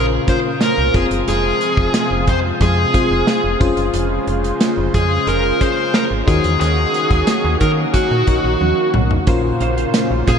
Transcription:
Already playing: A#1 A#2 C#3 A#3 C#4 F4 A#4 C5
0.27 C#4 F4 A#4 C5, kick, closed hi-hat
0.61 A#4, snare, closed hi-hat
0.78 C2
0.94 F1 C3 F3 G#3 C4 F4 G#4 C5, kick, closed hi-hat
1.11 F#1, closed hi-hat
1.28 F1 G#4, closed hi-hat
1.61 closed hi-hat
1.77 F1, kick
1.94 snare, closed hi-hat
2.11 F1
2.27 F2 C5, kick, closed hi-hat
2.61 F2 G#4, kick, closed hi-hat
2.93 C4 F4 G#4 C5, kick, closed hi-hat
3.11 F1
3.27 snare, closed hi-hat
3.44 F1
3.60 F1 C#3 C#4 F4 G#4 C5, kick, closed hi-hat
3.77 F#1, closed hi-hat
3.94 F1, closed hi-hat
4.27 F1, closed hi-hat
4.44 closed hi-hat
4.61 snare, closed hi-hat
4.78 F1
4.94 F2 G#4, kick, closed hi-hat
5.27 F1 A#4, closed hi-hat
5.60 C#4 F4 G#4 C5, kick, closed hi-hat
5.94 A#4, snare, closed hi-hat
6.11 G#1
6.27 D#2 D#3 A#3 C#4 D#4 F#4 G#4 A#4 C#5, kick, closed hi-hat
6.44 E2, closed hi-hat
6.61 D#2 G#4, closed hi-hat
6.94 closed hi-hat
7.10 D#2, kick, closed hi-hat
7.27 snare, closed hi-hat
7.45 D#2
7.61 D#3 A#4, kick, closed hi-hat
7.94 F#4, kick, closed hi-hat
8.11 A#2
8.27 A#1 D#4 F#4 A#4 C#5, kick, closed hi-hat
8.44 A#1
8.61 D#2, high tom
8.94 B1, mid tom
9.11 floor tom
9.27 A#1 A#2 C#3 A#3 C#4 F4 A#4 C5 F5, kick, closed hi-hat
9.44 muted clean electric guitar stroke
9.60 A#1 C#4 F4 C5 F5, closed hi-hat
9.77 C#4 F4 C5 F5, closed hi-hat
9.94 snare, closed hi-hat
10.11 A#1, muted clean electric guitar stroke
10.27 A#2 C#4 F4 G#4 C5 F5, kick, closed hi-hat

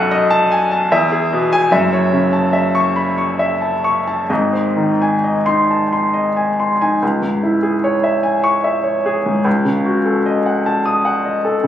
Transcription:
Already playing: B1 F#2 A4 D#5 F#5
0.11 D#5
0.30 A5
0.51 G#5
0.71 A5
0.92 E2 E5
1.12 G#4
1.33 B2
1.53 G#5
1.71 F#1 F#2 E5
1.93 C#5
2.13 C#3
2.33 A5
2.53 E5
2.75 C#6
2.96 B5
3.18 C#6
3.39 E5
3.61 A5
3.84 C#6
4.07 A5
4.29 G#1 G#2 D#5
4.53 C5
4.76 D#3 D#4
5.01 G#5
5.24 D#5
5.46 D#4 C6
5.71 A5
5.93 C6
6.14 D#5
6.37 G#5
6.60 C6
6.81 D#4 G#5
7.02 C#2
7.22 G#2
7.43 E4
7.63 G#4
7.84 C#5
8.04 E5
8.23 G#5
8.44 C#6
8.64 E5
8.84 C#5
9.06 G#4
9.26 G#2
9.45 C#2
9.65 C#3
9.85 F#4
10.05 A4
10.26 D#5
10.46 F#5
10.66 A5
10.86 D#6
11.05 F#5
11.25 D#5
11.45 A4
11.64 C#3

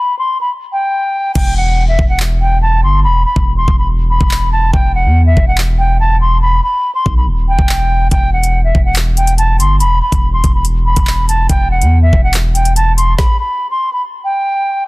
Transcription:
Already playing: B5
0.19 C6
0.41 B5
0.72 G5
1.35 E1 G5, kick, crash
1.57 F#5
1.88 E5
1.99 E1, kick
2.09 F#5
2.20 clap
2.41 G5
2.62 A5
2.83 G1 C6
3.04 E1 B5
3.26 B5
3.36 E1, kick
3.57 C6
3.68 E1, kick
3.79 B5
4.10 B5
4.21 E1, kick
4.31 clap
4.52 A5
4.73 E1 G5, kick
4.95 F#5
5.05 E2
5.26 E5
5.37 E1, kick
5.48 F#5
5.58 clap
5.79 G5
6.00 A5
6.21 C6
6.42 B5
6.64 B5
6.95 C6
7.06 B1, kick
7.17 B5
7.27 D#1
7.48 G5
7.59 E1, kick
7.69 clap
8.11 E1 G5, kick, closed hi-hat
8.33 F#5
8.43 closed hi-hat
8.64 E5
8.75 E1, kick
8.85 F#5
8.96 clap, closed hi-hat
9.17 G5, closed hi-hat
9.27 closed hi-hat
9.38 A5, closed hi-hat
9.59 G1 C6, closed hi-hat
9.80 E1 B5, closed hi-hat
10.02 B5
10.12 E1, kick, closed hi-hat
10.33 C6
10.44 E1, kick, closed hi-hat
10.55 B5
10.65 closed hi-hat
10.86 B5
10.96 E1, kick, closed hi-hat
11.07 clap
11.28 A5, closed hi-hat
11.49 E1 G5, kick, closed hi-hat
11.71 F#5
11.81 E2, closed hi-hat
12.02 E5
12.13 E1, kick
12.24 F#5
12.34 clap, closed hi-hat
12.55 G5, closed hi-hat
12.65 closed hi-hat
12.76 A5, closed hi-hat
12.97 C6, closed hi-hat
13.18 B5, kick, snare
13.40 B5
13.71 C6
13.93 B5
14.25 G5

